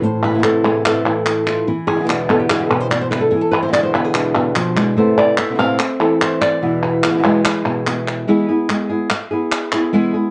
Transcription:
Already playing: nylon-string guitar E3 E4
0.02 nylon-string guitar A2 C5, muted nylon-string guitar stroke
0.25 nylon-string guitar B4
0.29 nylon-string guitar C3 E3 A3 B3 E4
0.34 nylon-string guitar C3 E3 A3 B3 E4
0.38 nylon-string guitar C3 E3 A3 B3 E4
0.43 nylon-string guitar A2 C3 E3 A3 B3 E4 A4, clap
0.64 nylon-string guitar A3 G#4
0.84 nylon-string guitar A2 C3 E3 A3 B3 E4 A4, clap
1.05 nylon-string guitar E3 A3 B3 E4
1.26 muted nylon-string guitar stroke, clap
1.46 nylon-string guitar E3 A3 B3 E4 F4, clap
1.67 nylon-string guitar E3 E4, muted nylon-string guitar stroke
1.87 nylon-string guitar G#4
1.95 nylon-string guitar B2 D3 G#3 B3 E4
2.00 nylon-string guitar B2 D3 G#3 B3 E4
2.04 nylon-string guitar D3 G#3 B3 E4
2.08 nylon-string guitar E2 B2 D3 G#3 B3 E4 D5, clap
2.29 nylon-string guitar B3 A4
2.39 nylon-string guitar G4
2.50 nylon-string guitar E2 B2 D3 G#3 B3 E4 G#4, clap
2.60 nylon-string guitar A4
2.70 nylon-string guitar B2 B4
2.80 nylon-string guitar C5
2.90 nylon-string guitar D5, muted nylon-string guitar stroke, clap
3.01 nylon-string guitar C5
3.11 nylon-string guitar D3 G#3 B3 E4 B4, clap
3.21 nylon-string guitar A4
3.31 nylon-string guitar E3 G#4, muted nylon-string guitar stroke
3.41 nylon-string guitar A4
3.51 nylon-string guitar B4
3.62 nylon-string guitar B2 D3 G#3 B3 E4 C5
3.68 nylon-string guitar B2 D3 G#3 B3 E4
3.72 nylon-string guitar E2 B2 D3 G#3 B3 E4 D5, clap
3.83 nylon-string guitar C5
3.94 nylon-string guitar B3 B4
4.05 nylon-string guitar G#4
4.14 nylon-string guitar E2 B2 D3 G#3 B3 D4 E4, clap
4.36 nylon-string guitar B2
4.56 nylon-string guitar F3, muted nylon-string guitar stroke, clap
4.76 nylon-string guitar D3 G#3 B3 E4, clap
4.97 nylon-string guitar A2 C3 E3 A3 B3 E4 C5
5.18 nylon-string guitar D5
5.37 nylon-string guitar E3 A3 B3 E4 E5, clap
5.49 nylon-string guitar C3 E3 A3 B3 E4
5.54 nylon-string guitar C3 E3 A3 B3 E4
5.58 nylon-string guitar A2 C3 E3 A3 B3 C4 E4 F5
5.79 nylon-string guitar E5, muted nylon-string guitar stroke, clap
6.00 nylon-string guitar E3 A3 B3 E4 A4
6.20 nylon-string guitar E3 A3 E4 C5, clap
6.41 nylon-string guitar D5, clap
6.61 nylon-string guitar E2 B2 E3 G#3 B3 E4
6.84 nylon-string guitar B4
7.03 nylon-string guitar E3 G#3 B3 E4 G#4, clap
7.10 nylon-string guitar B2 E3 G#3 B3 E4
7.14 nylon-string guitar B2 E3 G#3 B3 E4
7.18 nylon-string guitar B2 E3 G#3 B3 E4
7.23 nylon-string guitar E2 B2 E3 G#3 B3 E4
7.44 nylon-string guitar B4, muted nylon-string guitar stroke, clap
7.65 nylon-string guitar B2 E3 G#3 B3 E4, clap
7.86 nylon-string guitar E3 G#3 B3 E4, clap
8.08 clap
8.28 nylon-string guitar E3 G#3 B3 E4 G#4
8.49 nylon-string guitar B3 E4 G#4
8.69 nylon-string guitar G#3 B3 E4 G#4, clap
8.89 nylon-string guitar B3 E4 G#4
9.10 muted nylon-string guitar stroke, clap
9.31 nylon-string guitar B3 E4 G#4
9.52 clap
9.72 nylon-string guitar B3 E4 G#4, clap
9.93 nylon-string guitar E3 G#3 B3 E4 G#4
10.14 nylon-string guitar B3 E4 G#4

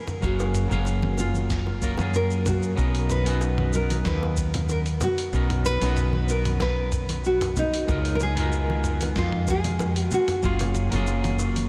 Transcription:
Already playing: clean electric guitar G#3 B3 D#4 F4 G#4, nylon-string guitar A#4
0.07 mid tom, high bongo, cabasa
0.21 fretless electric bass F#1, clean electric guitar F#3 A#3 C#4 G#4 F5, nylon-string guitar F#4, kick, cabasa
0.39 high bongo, cabasa
0.55 mid tom, cabasa
0.68 fretless electric bass F#1, clean electric guitar F#3 A#3 C#4, low conga, cabasa
0.72 clean electric guitar G#4 F5
0.85 high bongo, cabasa
1.03 mid tom, high conga
1.17 nylon-string guitar F4, high bongo, cabasa
1.35 high conga, cabasa
1.50 kick, snare, mid tom, cabasa
1.67 high bongo
1.81 clean electric guitar F#3 A#3 C#4 F4 A#4, kick, cabasa
1.96 fretless electric bass F#2, clean electric guitar F#3 A#3 C#4, mid tom, high bongo, high conga, cabasa
2.00 clean electric guitar F4 G#4
2.14 nylon-string guitar A#4, cabasa
2.31 cabasa
2.46 nylon-string guitar F#4, kick, mid tom, high bongo, low conga, cabasa
2.63 cabasa
2.76 fretless electric bass B1, clean electric guitar F#3 B3 C#4 D#4 A#4, kick, cabasa
2.95 closed hi-hat
3.10 nylon-string guitar B4, mid tom, high bongo, cabasa
3.24 clean electric guitar F#3 B3 C#4, closed hi-hat, cabasa
3.28 clean electric guitar D#4 F#4
3.41 high bongo, cabasa
3.58 mid tom, high conga
3.73 nylon-string guitar A#4, cabasa
3.90 closed hi-hat, high bongo, high conga, cabasa
4.05 fretless electric bass D#2, nylon-string guitar B4, kick, snare, mid tom, cabasa
4.23 high bongo
4.37 kick, cabasa
4.54 closed hi-hat, mid tom, high conga, low conga, cabasa
4.69 nylon-string guitar A#4, high bongo, cabasa
4.86 closed hi-hat, cabasa
5.00 nylon-string guitar F#4, mid tom, high bongo, low conga, cabasa
5.18 closed hi-hat, cabasa
5.33 fretless electric bass B1, clean electric guitar F#3 B3 C#4 D#4 A#4, kick, cabasa
5.50 closed hi-hat, mid tom, high bongo
5.65 nylon-string guitar B4, cabasa
5.80 fretless electric bass B1, clean electric guitar F#3 B3 C#4 D#4, closed hi-hat, high bongo, low conga, cabasa
5.85 clean electric guitar F#4
5.97 mid tom, cabasa
6.13 high conga
6.29 nylon-string guitar A#4, high bongo, cabasa
6.45 closed hi-hat, mid tom, high conga, cabasa
6.60 nylon-string guitar B4, kick, snare, high bongo, cabasa
6.92 kick, mid tom, cabasa
7.09 closed hi-hat, high bongo, high conga, cabasa
7.24 nylon-string guitar F#4, cabasa
7.41 closed hi-hat, mid tom, high bongo, cabasa
7.57 nylon-string guitar D#4, kick, low conga, cabasa
7.74 closed hi-hat, cabasa
7.87 fretless electric bass C#2, clean electric guitar G#3 B3 D#4 F4 A#4, kick, mid tom, high bongo, cabasa
8.05 closed hi-hat
8.15 nylon-string guitar A#4
8.20 nylon-string guitar G#4, high bongo, cabasa
8.35 clean electric guitar G#3 B3 D#4 F4, closed hi-hat, mid tom, cabasa
8.40 clean electric guitar A#4
8.52 cabasa
8.70 high bongo, high conga
8.84 mid tom, cabasa
9.01 closed hi-hat, high bongo, high conga, cabasa
9.16 fretless electric bass F2, nylon-string guitar F4, kick, snare, cabasa
9.32 mid tom
9.47 nylon-string guitar G#4, kick, high bongo, cabasa
9.64 closed hi-hat, high conga, low conga, cabasa
9.79 mid tom, high bongo, cabasa
9.96 nylon-string guitar F#4, closed hi-hat, cabasa
10.11 nylon-string guitar F#4, low conga, cabasa
10.28 closed hi-hat, mid tom, high bongo, cabasa
10.43 fretless electric bass F#1, clean electric guitar F#3 A#3 C#4 F4 G#4, nylon-string guitar F4, kick, cabasa
10.59 closed hi-hat, high bongo, low conga, cabasa
10.75 mid tom, cabasa
10.90 fretless electric bass F#1, clean electric guitar F#3 A#3 C#4, closed hi-hat, low conga, cabasa
10.94 clean electric guitar F4 G#4
11.07 high bongo, cabasa
11.24 closed hi-hat, mid tom, high conga, cabasa
11.39 high bongo, cabasa
11.56 closed hi-hat, high conga, cabasa

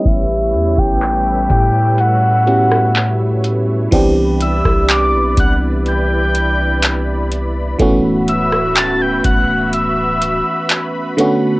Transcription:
Already playing: fm electric piano G3 B3 C#4 E4 G4, analog synth pad G3 A3 B4 C#5 E5
0.05 808-style bass A1, soft synth lead E5, kick, closed hi-hat
0.53 808-style bass E2, closed hi-hat
0.78 808-style bass A1, soft synth lead G5, kick
1.02 clap, closed hi-hat
1.50 808-style bass A2, soft synth lead G5, kick, closed hi-hat
1.98 soft synth lead F#5, closed hi-hat
2.47 fm electric piano B3 C#4 E4 F#4 G4, closed hi-hat
2.72 cross-stick
2.95 clap, closed hi-hat
3.44 closed hi-hat
3.91 808-style bass C2, fm electric piano E3 B3 C4 D4 G4, analog synth pad E4 B4 D5 B5, kick, closed hi-hat, crash
4.41 soft synth lead E6, closed hi-hat
4.65 808-style bass C2, kick, cross-stick
4.90 soft synth lead D6, clap, closed hi-hat
5.14 808-style bass B1
5.37 808-style bass C2, soft synth lead F#6, kick, closed hi-hat
5.86 soft synth lead G6, closed hi-hat
6.35 closed hi-hat
6.83 clap, closed hi-hat
7.32 closed hi-hat
7.79 808-style bass D1, fm electric piano E3 A3 B3 C#4 F#4, analog synth pad F#4 B4 E5, kick, closed hi-hat
8.28 soft synth lead E6, closed hi-hat
8.52 cross-stick
8.77 soft synth lead A6, clap, closed hi-hat
9.01 soft synth lead G6
9.24 808-style bass D1, soft synth lead F#6, kick, closed hi-hat
9.73 soft synth lead E6, closed hi-hat
10.22 closed hi-hat
10.70 clap, closed hi-hat
11.17 fm electric piano D3 A3 B3 C#4 F#4, analog synth pad A4 F#5, closed hi-hat

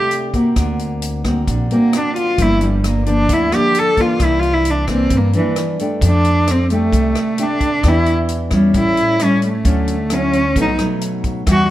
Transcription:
Already playing: nylon-string guitar C3 A3 D4 G4
0.11 closed hi-hat
0.34 nylon-string guitar A#3 C4 F#4, kick, closed hi-hat
0.56 upright bass D2, nylon-string guitar D3, kick, cross-stick, closed hi-hat
0.79 closed hi-hat
1.02 closed hi-hat
1.24 nylon-string guitar A#3 C4 F#4, kick, cross-stick, closed hi-hat
1.47 upright bass A#1, nylon-string guitar D3, kick, closed hi-hat
1.71 nylon-string guitar A#3 C4 F#4, cello A#3, closed hi-hat
1.93 cross-stick, closed hi-hat
1.97 cello D4
2.16 cello F4, closed hi-hat
2.38 upright bass G1, nylon-string guitar G2 F3 A#3 D4, cello E4, kick, closed hi-hat
2.61 cello G3, closed hi-hat
2.84 cello A#3, cross-stick, closed hi-hat
3.06 nylon-string guitar F3 A#3 D4, cello D4, closed hi-hat
3.29 upright bass D2, nylon-string guitar D3, kick, closed hi-hat
3.33 cello E4
3.52 nylon-string guitar F3 A#3 D4, cello G4, cross-stick, closed hi-hat
3.75 closed hi-hat
3.79 cello A4
3.97 nylon-string guitar E3 A#3 D4, kick, closed hi-hat
4.01 cello F4
4.19 upright bass C2, nylon-string guitar C3, kick, cross-stick, closed hi-hat
4.24 cello E4
4.40 cello F4, closed hi-hat
4.54 cello E4
4.65 closed hi-hat
4.70 cello D4
4.87 nylon-string guitar E3 A#3 D4, kick, cross-stick, closed hi-hat
4.92 cello C4
5.10 upright bass G2, nylon-string guitar G2, kick, closed hi-hat
5.17 cello A#3
5.33 nylon-string guitar E3 A#3 D4, cello E3, closed hi-hat
5.56 cross-stick, closed hi-hat
5.79 nylon-string guitar A3 D4 G4, closed hi-hat
6.01 upright bass F2, nylon-string guitar F3, kick, closed hi-hat
6.07 cello D4
6.24 closed hi-hat
6.47 cello C4, cross-stick, closed hi-hat
6.70 nylon-string guitar A3 D4 G4, cello A3, closed hi-hat
6.92 upright bass C2, nylon-string guitar C3, kick, closed hi-hat
7.15 cross-stick, closed hi-hat
7.38 nylon-string guitar A3 D4 G4, closed hi-hat
7.43 cello D4
7.61 kick, closed hi-hat
7.83 upright bass E2, nylon-string guitar E3 B3 D4 G4, kick, cross-stick, closed hi-hat
7.88 cello E4
8.06 closed hi-hat
8.29 closed hi-hat
8.51 nylon-string guitar G3 C#4 E4, kick, cross-stick, closed hi-hat
8.74 upright bass A1, nylon-string guitar A2, kick, closed hi-hat
8.79 cello E4
8.97 closed hi-hat
9.19 nylon-string guitar G3 C#4 E4, cross-stick, closed hi-hat
9.24 cello C#4
9.42 closed hi-hat
9.47 cello A3
9.65 upright bass D2, nylon-string guitar D3 F#3 C#4 E4, kick, closed hi-hat
9.88 closed hi-hat
10.10 nylon-string guitar F#3 C#4 E4, cross-stick, closed hi-hat
10.14 cello C#4
10.33 closed hi-hat
10.56 upright bass B1, nylon-string guitar B2 F#3 A3 D#4, kick, closed hi-hat
10.61 cello D#4
10.79 nylon-string guitar F#3 A3 D#4, cross-stick, closed hi-hat
11.01 closed hi-hat
11.24 kick, closed hi-hat
11.47 upright bass E2, nylon-string guitar E3 G3 D4 F#4, kick, cross-stick, closed hi-hat
11.52 cello F#4

